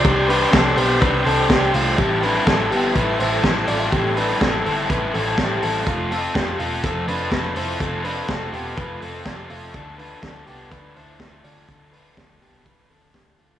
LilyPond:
<<
  \new Staff \with { instrumentName = "String machine" } { \time 4/4 \key d \dorian \tempo 4 = 124 << { <c'' d'' e'''>1 | <a' e'' c'''>1~ | <a' e'' c'''>1 | r1 |
r1 | r1 | r1 | } \\ { g''1~ | g''1~ | g''1 | r1 |
r1 | r1 | r1 | } >> }
  \new Staff \with { instrumentName = "Clean electric guitar" } { \time 4/4 \key d \dorian <c' g'>8 <d' b'>8 <c' a'>8 <b g'>8 <d' b'>8 <c' a'>8 <c' g'>8 <a f'>8 | <c' g'>8 <d' b'>8 <c' a'>8 <b g'>8 <e' b'>8 <e' c''>4 <f' d''>8 | <c' g'>8 <d' b'>8 <c' a'>8 <c' a'>8 <e' b'>8 <c' a'>8 <c' g'>8 <c' a'>8 | <a f'>8 <c' a'>8 <c' g'>8 <a f'>8 <c' a'>8 <d' b'>4 <e' c''>8 |
<c' a'>8 <d' b'>8 <c' a'>8 <b g'>8 <f' b'>8 <c' a'>8 <c' g'>8 <a f'>8 | <d' a'>8 <d' b'>8 <d' a'>8 <b g'>8 <d' b'>8 <e' c''>4 <f' d''>8 | <d' a'>8 <d' b'>8 <d' a'>8 <b g'>8 <d' b'>8 <c' a'>8 <d' g'>8 <a f'>8 | }
  \new Staff \with { instrumentName = "Overdriven electric guitar" } { \time 4/4 \key d \dorian <c' d' g' c''>8 <d' g' c''>8 <c' d' g' c''>8 <d' g' c''>8 <c' d' g' c''>8 <d' g' c''>8 <c' d' g' c''>8 <d' g' c''>8 | <a, e g c' e' a'>8 <g c' e' a'>8 <g c' e' a'>8 <g c' e' a'>8 <a, e g c' e' a'>8 <g c' e' a'>8 <g c' e' a'>8 <g c' e' a'>8 | <a, e g c' e' a'>8 <g c' e' a'>8 <g c' e' a'>8 <g c' e' a'>8 <a, e g c' e' a'>8 <g c' e' a'>8 <g c' e' a'>8 <g c' e' a'>8 | <f a c' f' a'>8 <c' f' a'>8 <a c' f' a'>8 <c' f' a'>8 <f a c' f' a'>8 <c' f' a'>8 <a c' f' a'>8 <c' f' a'>8 |
<f a c' f' a'>8 <c' f' a'>8 <a c' f' a'>8 <c' f' a'>8 <f a c' f' a'>8 <c' f' a'>8 <a c' f' a'>8 <c' f' a'>8 | <d a d' f' a'>8 <d' f' a'>8 <a d' f' a'>8 <d' f' a'>8 <d a d' f' a'>8 <d' f' a'>8 <a d' f' a'>8 <d' f' a'>8 | <d a d' f' a'>8 <d' f' a'>8 <a d' f' a'>8 <d' f' a'>8 <d a d' f' a'>8 <d' f' a'>8 <a d' f' a'>8 <d' f' a'>8 | }
  \new Staff \with { instrumentName = "Picked electric bass" } { \clef bass \time 4/4 \key d \dorian c,4 c,8 b,,8 c,8 c,8 c,8 c,8 | a,,4 a,,8 g,,8 a,,8 a,,8 a,,8 a,,8 | a,,4 a,,8 g,,8 a,,8 a,,8 a,,8 a,,8 | f,,4 f,,8 e,,8 f,,8 f,,8 f,,8 f,,8 |
f,,4 f,,8 e,,8 f,,8 f,,8 f,,8 f,,8 | d,4 d,8 c,8 d,8 d,8 d,8 d,8 | d,4 d,8 c,8 d,8 d,8 r8 d,8 | }
  \new DrumStaff \with { instrumentName = "Drums" } \drummode { \time 4/4 <hh bd>8 hho8 <hh bd sn>8 hho8 <hh bd>8 hho8 <hh bd sn>8 hho8 | <hh bd>8 hho8 <hh bd sn>8 hho8 <hh bd>8 hho8 <hh bd sn>8 hho8 | <hh bd>8 hho8 <hh bd sn>8 hho8 <hh bd>8 hho8 <hh bd sn>8 hho8 | <hh bd>8 hho8 <hh bd sn>8 hho8 <hh bd>8 hho8 <hh bd sn>8 hho8 |
<hh bd>8 hho8 <hh bd sn>8 hho8 <hh bd>8 hho8 <hh bd sn>8 hho8 | <hh bd>8 hho8 <hh bd sn>8 hho8 <hh bd>8 hho8 <hh bd sn>8 hho8 | <hh bd>8 hho8 <hh bd sn>8 hho8 <hh bd>8 hho8 <hh bd sn>8 hho8 | }
>>